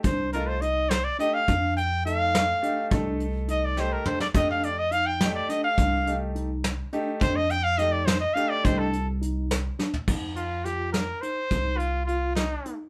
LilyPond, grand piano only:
\new Staff \with { instrumentName = "Grand piano" } { \time 5/8 \key f \mixolydian \tempo 4 = 105 r8 <a ees' f'>8 r4 <a ees' g'>8 | r4 <a ees' a'>4 <a ees' g'>8 | <a ees' a'>4. <a ees' g'>8 r8 | <a ees' g'>8 r4 <a ees' g'>4~ |
<a ees' g'>8 <a ees' g'>8 r4 <a ees' g'>8 | r4 <a ees' g'>8 r8 <a ees' g'>8 | <a ees' g'>8 r2 | r2 r8 |
r2 r8 | }